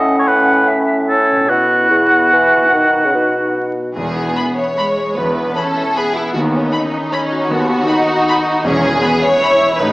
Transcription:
Already playing: A2 C#4 E4 A4 D#5 F#5
0.19 C#5
0.28 B4
0.68 E5
1.09 C#4 E4 A4 C#5
1.31 B2
1.36 B3
1.40 E4
1.45 B3 E4 F#4
1.49 B2 E4 F#4 F#5
1.90 E2
2.33 E3
2.56 B2
2.60 B3
2.64 D#4
2.69 F#4
2.73 D#3 B3 D#4
3.05 C#3
3.14 B2
3.96 E1 E2 E3 B3 G#4
4.16 E4
4.36 B4 B5
4.57 C#5 E5
4.78 G#3 B4 B5
4.97 G#4
5.16 E1 E2 E3 B3 B4
5.36 E4
5.55 C#4 A4 B4 B5
5.77 E5
5.96 B3 G#4 B4 B5
6.15 E4 G#4
6.33 D#2 D#3 F#4
6.52 B3 C#4
6.72 D#4 A4 B5
6.93 B4
7.12 C#4 D#4 A4 B5
7.32 F#4
7.49 D#2 D#3 B3 F#4
7.68 B3
7.87 D#4 A4 B5
8.07 B4
8.26 A4 B5
8.46 F#4
8.64 E1 E2 E3 C#4 G#4
8.82 E4
9.02 B3 B4 B5
9.22 C#5 E5
9.42 E4 B4 B5
9.61 G#4
9.80 A1 A2 D#4 B4

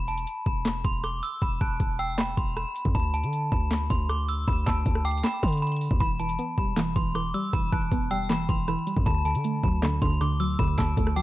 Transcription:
Already playing: E1 B5
0.08 A5, closed hi-hat
0.18 closed hi-hat
0.27 closed hi-hat
0.46 E1 B5, kick
0.65 snare, clap, closed hi-hat
0.84 E1 C6, kick, closed hi-hat
1.04 D6, cross-stick, closed hi-hat
1.23 E6, closed hi-hat
1.42 E1 B5, kick, closed hi-hat
1.61 E1 A5 F#6, kick
1.80 E1, kick, closed hi-hat
1.99 G5 E6, closed hi-hat
2.18 B5, snare, clap, closed hi-hat
2.37 E1 C6, kick, closed hi-hat
2.57 B5, cross-stick, closed hi-hat
2.76 closed hi-hat
2.85 E2, kick
2.95 D2 A5 B5, kick, closed hi-hat
3.14 A5, closed hi-hat
3.23 D3, closed hi-hat
3.33 closed hi-hat
3.52 D2 B5, kick
3.71 snare, clap, closed hi-hat
3.90 D2 C6, kick, closed hi-hat
4.09 D6, cross-stick, closed hi-hat
4.28 E6, closed hi-hat
4.48 D2 B5, kick, closed hi-hat
4.67 D2 A5 E6, kick, snare, clap
4.86 D2, kick, closed hi-hat
4.95 cross-stick
5.05 G5 D6, closed hi-hat, open hi-hat
5.11 closed hi-hat
5.18 closed hi-hat
5.24 B5, snare, clap, closed hi-hat
5.43 D3 C6, kick, closed hi-hat
5.48 closed hi-hat
5.53 closed hi-hat
5.57 closed hi-hat
5.62 B5, closed hi-hat
5.67 closed hi-hat
5.72 closed hi-hat
5.77 closed hi-hat
5.81 open hi-hat
5.91 D2, kick
6.00 E1 E3 B5, kick, closed hi-hat
6.20 E3 A5, closed hi-hat
6.29 closed hi-hat
6.39 B3, closed hi-hat
6.58 E1 G3 B5, kick
6.77 E3, snare, clap, closed hi-hat
6.96 E1 E3 C6, kick, closed hi-hat
7.15 E3 D6, cross-stick, closed hi-hat
7.34 G3 E6, closed hi-hat
7.53 E1 E3 B5, kick, closed hi-hat
7.72 E1 E3 A5 F#6, kick
7.92 E1 B3, kick, closed hi-hat
8.11 G3 G5 E6, closed hi-hat
8.30 E3 B5, snare, clap, closed hi-hat
8.49 E1 E3 C6, kick, closed hi-hat
8.68 E3 B5, cross-stick, closed hi-hat
8.87 G3, closed hi-hat
8.97 E2, kick
9.06 D2 D3 A5 B5, kick, closed hi-hat
9.25 D3 A5, closed hi-hat
9.35 D3, closed hi-hat
9.44 A3, closed hi-hat
9.63 D2 F#3 B5, kick
9.83 D3, snare, clap, closed hi-hat
10.02 D2 D3 C6, kick, closed hi-hat
10.21 D3 D6, cross-stick, closed hi-hat
10.40 F#3 E6, closed hi-hat
10.59 D2 D3 B5, kick, closed hi-hat
10.78 D2 D3 A5 E6, kick, snare, clap
10.97 D2 A3, kick, closed hi-hat
11.07 cross-stick
11.16 F#3 G5 D6, closed hi-hat, open hi-hat

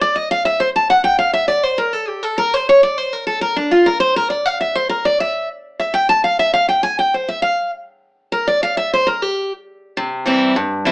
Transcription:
0.01 D5
0.16 D#5
0.31 F5
0.45 E5
0.60 C5
0.76 A5
0.90 F#5
1.04 G5
1.19 F5
1.33 E5
1.48 D5
1.63 C5
1.78 A#4
1.93 A4
2.08 G4
2.23 A4
2.38 A#4
2.54 C5
2.69 C#5
2.83 D5
2.98 C5
3.13 A#4
3.27 A4
3.41 A#4
3.56 D4
3.71 F4
3.86 A#4
4.00 C5
4.16 A#4
4.30 D5
4.46 F5
4.61 E5
4.75 C5
4.89 A#4
5.05 D5
5.20 E5
5.80 E5
5.94 G5
6.09 A5
6.24 F5
6.39 E5
6.54 F5
6.69 G5
6.83 G#5
6.99 G5
7.14 C5
7.28 E5
7.42 F5
8.32 A#4
8.48 D5
8.63 F5
8.77 E5
8.93 C5
9.07 A#4
9.22 G4
9.97 C3
10.26 E3 G3 C4 E4
10.56 G2
10.85 E3 G3 C4 E4

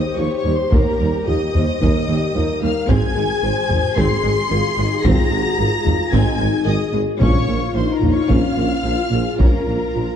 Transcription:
Already playing: G4 C5 D#5 D#6
0.17 D#2 F3 C#5 C#6
0.36 C#5 C#6
0.44 D#2 G3
0.53 C5 C6
0.71 D#2 A#3 A#4 A#5, taiko
1.00 D#2 G3
1.26 D#2 F3 G4 D#5 D#6
1.55 D#2 G3 C5, taiko low
1.81 D#2 A#3 A#4, taiko
2.08 D#2 G3 G4
2.35 D#2 F3 A#4
2.61 D#2 G3 A#4 F5 F6
2.89 G#1 G#2 C4 G#4 G#5 G#6, taiko
3.16 G#1 G#2 G#3
3.43 G#1 G#2 D#3 C5
3.69 G#1 G#2 G#3, taiko low
3.96 G#1 G#2 C4 G#4 C6 C7, taiko
4.23 G#1 G#2 G#3
4.51 G#1 G#2 D#3 F4
4.77 G#1 G#2 G#3 D#4
5.04 G#1 G#2 C4 F4 A#5 A#6, taiko
5.31 G#1 G#2 G#3 F#4
5.58 G#1 G#2 D#3 F4
5.85 G#1 G#2 G#3, taiko low
6.11 G#1 G#2 C4 D#4 G#5 G#6, taiko
6.38 G#1 G#2 G#3
6.65 G#1 G#2 D#3 G#4 D#5 D#6
6.92 G#1 G#2 G#3
7.20 A#1 A#2 C#4 F4 C#5 C#6, taiko
7.47 A#1 A#2 A#3 F4
7.74 A#1 A#2 F3 D#4 C5 C6
7.93 A#4 A#5
8.01 A#1 A#2 A#3, taiko low
8.10 C#5 C#6
8.28 A#1 A#2 C#4 F5 F6, taiko
8.57 A#1 A#2 A#3
8.84 A#1 A#2 F3 F4
9.11 A#1 A#2 A#3 G#4
9.38 A#1 A#2 C#4 A#4 A#5, taiko
9.66 A#1 A#2 A#3
9.95 A#1 A#2 F3

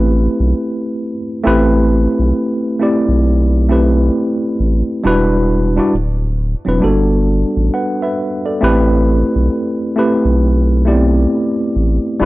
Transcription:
Already playing: A1 A3 C4 E4 G4 B4
0.40 B1
1.44 A1 A3 C4 E4 G4 B4
2.19 B1
2.80 A3 C4 E4 G4 D5
3.08 B1
3.69 A3 C4 E4 G4 B4
4.60 A1
5.04 E1 G3 D4 E4 F#4 B4
5.76 G3 D4 E4 F#4 D5
5.94 D1
6.65 E1 F#3 C4 D4 E4 B4
6.80 G1 G3 A#3 D4 F#4 A4
6.88 B3
7.57 A1
7.74 B4 F#5
8.02 B4 E5
8.46 A4 D5
8.61 A1 A3 C4 E4 G4 B4
9.35 B1
9.96 A3 C4 E4 G4 B4
10.25 B1
10.85 A3 B3 E4 G4 D5
10.92 C4
11.76 A1
12.20 E1 G3 D4 E4 F#4

